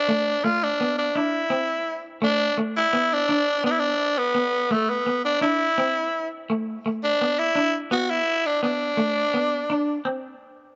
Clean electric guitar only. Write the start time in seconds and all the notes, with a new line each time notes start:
0.08 A3
0.44 A3
0.81 B3
1.16 D4
1.50 C4
2.22 A3
2.58 A3
2.93 B3
3.29 D4
3.64 B3
4.35 B3
4.71 A3
5.07 B3
5.41 D4
5.78 C4
6.50 A3
6.86 A3
7.21 B3
7.55 D4
7.91 B3
8.63 B3
8.97 A3
9.34 B3
9.70 D4
10.05 C4